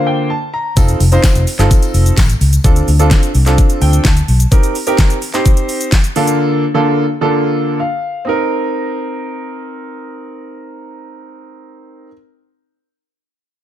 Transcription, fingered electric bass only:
0.77 0.93 F1 loud
1.00 1.16 F1 loud
1.35 1.43 F1 medium
1.59 1.67 G1 medium
1.94 2.10 F1 medium
2.18 2.33 A1 loud
2.41 2.57 C#2 loud
2.64 2.80 D2 loud
2.88 3.11 D2 loud
3.35 3.58 C2 medium
3.81 3.97 D2 medium
4.05 4.21 D2 loud
4.28 4.44 B1 medium

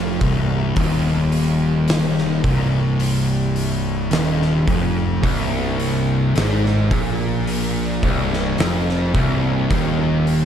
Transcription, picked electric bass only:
0.00 0.18 F1 loud
0.21 0.74 C1 loud
0.77 2.40 D#1 loud
2.44 4.08 C1 loud
4.11 4.64 D#1 loud
4.67 5.19 F1 loud
5.23 6.31 C1 loud
6.36 6.88 G#1 loud
6.91 7.99 A#1 loud
8.03 8.55 C1 loud
8.59 9.11 F1 loud
9.15 9.67 C1 medium
9.71 10.45 D#1 loud

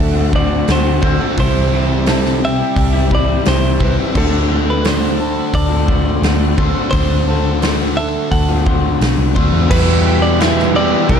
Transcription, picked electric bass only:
0.00 0.60 D2 medium
0.68 0.99 D2 medium
1.03 1.18 D2 medium
1.37 2.61 C2 loud
2.76 3.38 C2 medium
3.47 3.77 C2 loud
3.81 3.96 C2 medium
4.15 5.39 D2 loud
5.54 6.16 D2 loud
6.22 6.54 D2 loud
6.58 6.74 D2 medium
6.93 8.16 D2 loud
8.32 8.93 D2 medium
9.01 9.17 B1 medium
9.18 9.34 C2 medium
9.36 9.52 D2 medium
9.53 9.69 E2 medium
9.71 10.94 E2 loud
11.09 11.20 B1 loud

